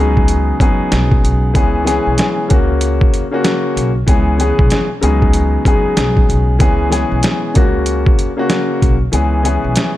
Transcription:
Already playing: upright bass C#2, grand piano C#3 F#3 G#3 B3
0.00 grand piano D#4 G#4
0.17 kick
0.28 closed hi-hat
0.60 grand piano C#3 F#3 G#3 B3 D#4 G#4, kick, closed hi-hat
0.92 upright bass B1, snare, closed hi-hat
1.11 kick
1.24 upright bass B1, closed hi-hat
1.54 upright bass C#2, grand piano E3 G#3 B3 C#4 G#4, kick, closed hi-hat
1.84 grand piano E3 G#3 B3 C#4 G#4, snare, closed hi-hat
2.06 upright bass B1
2.18 snare, closed hi-hat
2.48 upright bass C#2, grand piano C#3 A#3 C#4 F#4, kick, closed hi-hat
2.81 closed hi-hat
3.01 kick
3.14 closed hi-hat
3.31 grand piano C#3 A#3 C#4 F#4
3.44 snare, closed hi-hat
3.76 upright bass B1, closed hi-hat
4.06 upright bass C#2, grand piano E3 G#3 B3 C#4 G#4, kick, closed hi-hat
4.38 grand piano E3 G#3 B3 C#4 G#4, closed hi-hat
4.59 upright bass B1, kick
4.70 snare, closed hi-hat
5.01 upright bass C#2, grand piano C#3 F#3 G#3 B3 D#4 G#4, closed hi-hat
5.22 kick
5.33 closed hi-hat
5.65 grand piano C#3 F#3 G#3 B3 D#4 G#4, kick, closed hi-hat
5.97 upright bass B1, snare, closed hi-hat
6.17 kick
6.29 upright bass B1, closed hi-hat
6.59 upright bass C#2, grand piano E3 G#3 B3 C#4 G#4, kick, closed hi-hat
6.90 grand piano E3 G#3 B3 C#4 G#4, snare, closed hi-hat
7.12 upright bass B1
7.23 snare, closed hi-hat
7.54 upright bass C#2, grand piano C#3 A#3 C#4 F#4, kick, closed hi-hat
7.86 closed hi-hat
8.06 kick
8.19 closed hi-hat
8.37 grand piano C#3 A#3 C#4 F#4
8.50 snare, closed hi-hat
8.82 upright bass B1, kick, closed hi-hat
9.12 upright bass C#2, grand piano E3 G#3 B3 C#4 G#4, closed hi-hat
9.43 grand piano E3 G#3 B3 C#4 G#4, closed hi-hat
9.64 upright bass B1
9.76 snare, closed hi-hat

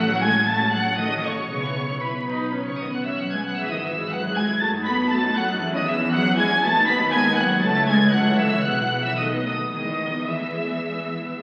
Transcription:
Already playing: double bass section A1, cello section F#3, violin section F#6
0.00 violin section F#5
0.10 viola section C#4 F#4
0.22 cello section G#3, viola section A3 A4, violin section G#5 G#6
0.36 viola section C#4 F#4
0.46 cello section A3, viola section A3 A4, violin section A5 A6
0.60 viola section C#4 F#4
0.72 cello section F#3, viola section A3 A4, violin section F#5 F#6
0.85 viola section C#4 F#4
0.97 cello section D#3, viola section A3 A4, violin section D#5 D#6
1.11 viola section C#4 F#4
1.23 cello section C#3, viola section A3 A4, violin section C#5 C#6
1.38 viola section C#4 F#4
1.50 double bass section B1, cello section C#3, viola section B3 G#4, violin section C#5 C#6
1.64 viola section E4 B4
1.77 viola section B3 G#4
1.90 viola section E4 B4
2.02 cello section B2, viola section E4, violin section B4 B5
2.29 viola section D#4
2.55 viola section C#4
2.67 cello section C#3, violin section C#5 C#6
2.80 cello section D#3, viola section B3, violin section D#5 D#6
2.93 cello section F#3, violin section F#5 F#6
3.06 cello section E3, viola section C#4, violin section E5 E6
3.19 cello section F#3, violin section F#5 F#6
3.32 cello section G#3, viola section B3, violin section G#5 G#6
3.45 cello section F#3, violin section F#5 F#6
3.58 double bass section G#1, cello section E3, viola section G#4 B4, violin section E5 E6
3.71 cello section D#3, viola section E4 G#4, violin section D#5 D#6
3.83 cello section E3, viola section G#4 B4, violin section E5 E6
3.98 viola section E4 G#4
4.10 cello section F#3, viola section G#4 B4, violin section F#5 F#6
4.23 viola section E4 G#4
4.35 cello section G#3, viola section G#4 B4, violin section G#5 G#6
4.49 viola section E4 G#4
4.61 double bass section F#2, cello section A3, viola section F#4 A4, violin section A5 A6
4.74 viola section D#4 F#4
4.86 cello section B3, viola section F#4 A4, violin section B5 B6
4.98 viola section D#4 F#4
5.12 cello section A3, viola section F#4 A4, violin section A5 A6
5.24 viola section D#4 F#4
5.37 cello section F#3, viola section F#4 A4, violin section F#5 F#6
5.49 viola section D#4 F#4
5.62 double bass section E2, viola section E4 G#4
5.74 cello section D#3, viola section C#4 E4, violin section D#5 D#6
5.88 cello section E3, viola section E4 G#4, violin section E5 E6
6.00 viola section C#4 E4
6.12 cello section F#3, viola section E4 G#4, violin section F#5 F#6
6.25 viola section C#4 E4
6.37 cello section G#3, viola section E4 G#4, violin section G#5 G#6
6.50 viola section C#4 E4
6.63 double bass section D#2, cello section A3, viola section B3 F#4, violin section A5 A6
6.75 viola section D#4 B4
6.88 cello section B3, viola section B3 F#4, violin section B5 B6
7.01 viola section D#4 B4
7.12 cello section G#3, viola section B3 F#4, violin section G#5 G#6
7.27 viola section D#4 B4
7.38 cello section F#3, viola section B3 F#4, violin section F#5 F#6
7.52 viola section D#4 B4
7.63 double bass section C#2, cello section A3, viola section C#4 A4, violin section A5 A6
7.77 viola section E4 C#5
7.88 cello section G#3, viola section C#4 A4, violin section G#5 G#6
8.03 viola section E4 C#5
8.14 cello section F#3, viola section C#4 A4, violin section F#5 F#6
8.28 viola section E4 C#5
8.39 cello section E3, viola section C#4 A4, violin section E5 E6
8.54 viola section E4 C#5
8.65 double bass section B1, cello section F#3, viola section B3 G#4, violin section F#5 F#6
8.79 viola section E4 B4
8.92 viola section B3 G#4
9.05 cello section E3, viola section E4 B4, violin section E5 E6
9.18 cello section D#3, viola section A3 A4, violin section D#5 D#6
9.32 viola section B3 B4
9.45 cello section D#3, viola section A3 A4, violin section D#5 D#6
9.59 viola section B3 B4
9.73 double bass section E2, cello section D#3, viola section G#3 G#4, violin section D#5 D#6
9.87 viola section B3 B4
10.00 viola section G#3 G#4
10.14 viola section B3 B4
10.27 cello section E3, viola section G#3 G#4, violin section E5 E6
10.40 viola section B3 B4
10.54 viola section G#3 G#4
10.67 viola section B3 B4
10.81 viola section G#3 G#4
10.95 viola section B3 B4
11.09 viola section G#3 G#4
11.22 viola section B3 B4
11.36 viola section G#3 G#4

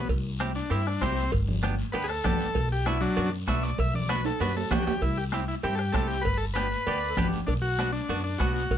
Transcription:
0.09 upright bass C2, bombo low, cowbell, high conga, long guiro
0.40 clean electric guitar C4 E4 G4, bombo rim, high conga, short guiro
0.55 transistor combo organ D4, short guiro
0.70 upright bass G2, clean electric guitar C4 E4 G4, transistor combo organ E4, cowbell, high conga, long guiro
0.87 transistor combo organ D4, bombo rim
1.01 upright bass C2, transistor combo organ C4, clean electric guitar C4 E4 G4, bombo low, bombo rim, high conga, low timbale, short guiro
1.17 short guiro
1.32 upright bass G1, bombo low, cowbell, high conga, long guiro
1.48 low conga
1.63 clean electric guitar B3 D4 G4, bombo rim, high conga, short guiro
1.79 short guiro
1.92 upright bass D2, clean electric guitar B3 D4 G4, transistor combo organ B4, cowbell, high conga, long guiro
2.04 transistor combo organ G#4
2.08 transistor combo organ A4, bombo rim
2.24 upright bass G1, clean electric guitar B3 D4 G4, bombo low, bombo rim, high conga, low conga, short guiro
2.40 short guiro
2.55 upright bass B1, bombo low, cowbell, high conga, long guiro
2.72 transistor combo organ G4
2.86 clean electric guitar B3 D4 F#4, transistor combo organ E4, bombo rim, high conga, short guiro
3.01 transistor combo organ F#3 D4, short guiro
3.16 upright bass F#2, clean electric guitar B3 D4 F#4, cowbell, high conga, long guiro
3.48 upright bass B1, clean electric guitar B3 D4 F#4, transistor combo organ E5, bombo low, bombo rim, high conga, short guiro
3.63 transistor combo organ D5, short guiro
3.78 upright bass B1, transistor combo organ E5, bombo low, cowbell, high conga, long guiro
3.94 transistor combo organ D5, low conga
4.09 clean electric guitar B3 D4 F#4, transistor combo organ B4, bombo rim, high conga, short guiro
4.25 transistor combo organ A4, high timbale, short guiro
4.40 upright bass F#2, clean electric guitar B3 D4 F#4, transistor combo organ B4, cowbell, high conga, low timbale, long guiro
4.56 transistor combo organ A4, low timbale
4.71 upright bass E2, clean electric guitar B3 D4 F#4, transistor combo organ G4, bombo low, bombo rim, high conga, low conga, low timbale, short guiro
4.82 transistor combo organ F#4
4.87 upright bass D2, transistor combo organ G4, low timbale, short guiro
5.02 upright bass C2, transistor combo organ E4, bombo low, cowbell, high conga, long guiro
5.18 transistor combo organ G4
5.32 clean electric guitar C4 E4 G4, transistor combo organ E4, bombo rim, high conga, short guiro
5.48 transistor combo organ E4, short guiro
5.63 upright bass G2, clean electric guitar C4 E4 G4, transistor combo organ G4, cowbell, high conga, long guiro
5.75 transistor combo organ G4 A4, bombo rim
5.92 upright bass C2, clean electric guitar C4 E4 G4, transistor combo organ A4, bombo low, bombo rim, high conga, low timbale, short guiro
6.08 transistor combo organ G4, short guiro
6.22 upright bass G1, transistor combo organ B4, bombo low, cowbell, high conga, long guiro
6.38 transistor combo organ A4
6.54 clean electric guitar B3 D4 G4, transistor combo organ B4, bombo rim, high conga, short guiro
6.72 short guiro
6.87 upright bass D2, clean electric guitar B3 D4 G4, accordion D5, cowbell, high conga, long guiro
7.10 accordion A4
7.17 upright bass G1, clean electric guitar B3 D4 G4, accordion G4, bombo low, bombo rim, high conga, low conga, short guiro
7.33 short guiro
7.47 upright bass B1, transistor combo organ D4, bombo low, cowbell, high conga, long guiro
7.62 transistor combo organ F#4
7.79 clean electric guitar B3 D4 F#4, bombo rim, high conga, short guiro
7.93 transistor combo organ D4, short guiro
8.09 upright bass F#2, clean electric guitar B3 D4 F#4, cowbell, high conga, long guiro
8.24 transistor combo organ D4
8.38 upright bass B1, clean electric guitar B3 D4 F#4, transistor combo organ F#4, bombo low, bombo rim, high conga, short guiro
8.54 transistor combo organ F#4, short guiro
8.71 upright bass B1, bombo low, cowbell, high conga, long guiro

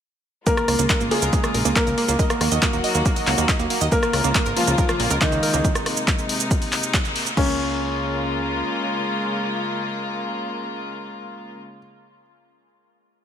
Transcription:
0.47 string section C#3 G#3 A#3 F4, synth arpeggio sound A#3, grand piano A#3 A#4, kick, closed hi-hat, shaker
0.57 synth arpeggio sound A#4, cross-stick, shaker
0.68 analog synth bass C#2, synth arpeggio sound A#3, cross-stick, open hi-hat
0.79 analog synth bass C#2, synth arpeggio sound A#3, closed hi-hat, shaker
0.90 synth arpeggio sound A#4, kick, clap, closed hi-hat, shaker
1.00 analog synth bass G#1, synth arpeggio sound A#3, shaker
1.11 grand piano G#3 G#4, synth arpeggio sound A#3, open hi-hat
1.22 analog synth bass C#2, synth arpeggio sound A#4, closed hi-hat, shaker
1.33 synth arpeggio sound A#3, kick, closed hi-hat, shaker
1.44 synth arpeggio sound A#3, cross-stick, shaker
1.54 analog synth bass A#1, synth arpeggio sound A#4, open hi-hat
1.65 analog synth bass C#2, synth arpeggio sound A#3, closed hi-hat, shaker
1.76 synth arpeggio sound A#3, grand piano A#3 A#4, kick, clap, closed hi-hat, shaker
1.87 analog synth bass C#2, synth arpeggio sound A#4, closed hi-hat, shaker
1.98 synth arpeggio sound A#3, open hi-hat
2.08 analog synth bass C#2, synth arpeggio sound A#3, closed hi-hat, shaker
2.19 string section D#3 F#3 F#4, synth arpeggio sound D#5, kick, closed hi-hat, shaker
2.30 synth arpeggio sound A#3, cross-stick, closed hi-hat, shaker
2.41 analog synth bass D#2, synth arpeggio sound A#3, cross-stick, open hi-hat
2.52 analog synth bass D#2, synth arpeggio sound D#5, closed hi-hat, shaker
2.62 synth arpeggio sound A#3, kick, clap, closed hi-hat, shaker
2.73 analog synth bass D#1, synth arpeggio sound A#3, closed hi-hat, shaker
2.84 synth arpeggio sound D#5, open hi-hat
2.95 analog synth bass D#2, synth arpeggio sound A#3, closed hi-hat, shaker
3.06 synth arpeggio sound A#3, kick, closed hi-hat, shaker
3.16 synth arpeggio sound D#5, open hi-hat, shaker
3.27 analog synth bass C#2, synth arpeggio sound A#3, clap, open hi-hat
3.38 analog synth bass D#2, synth arpeggio sound A#3, closed hi-hat, shaker
3.49 synth arpeggio sound D#5, kick, clap, closed hi-hat, shaker
3.59 analog synth bass D#2, synth arpeggio sound A#3, closed hi-hat, shaker
3.70 synth arpeggio sound A#3, open hi-hat
3.81 analog synth bass D#2, synth arpeggio sound D#5, closed hi-hat, shaker
3.92 string section C#3 G#3 F4, synth arpeggio sound A#3, grand piano A#3 A#4, kick, closed hi-hat, shaker
4.03 synth arpeggio sound A#3, cross-stick, shaker
4.13 analog synth bass C#2, synth arpeggio sound A#4, cross-stick, open hi-hat
4.24 analog synth bass C#2, synth arpeggio sound A#3, closed hi-hat, shaker
4.35 synth arpeggio sound A#3, kick, clap, closed hi-hat, shaker
4.46 analog synth bass G#1, synth arpeggio sound A#4, shaker
4.57 grand piano F3 F4, synth arpeggio sound A#3, open hi-hat
4.67 analog synth bass C#2, synth arpeggio sound A#3, closed hi-hat, shaker
4.78 synth arpeggio sound A#4, kick, closed hi-hat, shaker
4.89 synth arpeggio sound A#3, cross-stick, shaker
5.00 analog synth bass A#1, synth arpeggio sound A#3, open hi-hat
5.10 analog synth bass C#2, synth arpeggio sound A#4, closed hi-hat, shaker
5.21 grand piano D#3 D#4, synth arpeggio sound A#3, kick, clap, closed hi-hat, shaker
5.32 analog synth bass C#2, synth arpeggio sound A#3, closed hi-hat, shaker
5.43 synth arpeggio sound A#4, open hi-hat
5.54 analog synth bass C#2, synth arpeggio sound A#3, closed hi-hat, shaker
5.64 string section C3 D#4, kick, closed hi-hat, shaker
5.75 cross-stick, closed hi-hat, shaker
5.86 cross-stick, open hi-hat
5.97 closed hi-hat, shaker
6.08 kick, clap, closed hi-hat, shaker
6.19 closed hi-hat, shaker
6.29 open hi-hat
6.40 closed hi-hat, shaker
6.51 kick, closed hi-hat, shaker
6.62 open hi-hat, shaker
6.72 clap, open hi-hat
6.83 closed hi-hat, shaker
6.94 kick, clap, closed hi-hat, shaker
7.05 closed hi-hat, shaker
7.16 open hi-hat
7.26 closed hi-hat, shaker
7.37 analog synth bass C#2, string section C#3 G#3 A#3 F4, synth arpeggio sound A#3, grand piano C#4, kick, crash

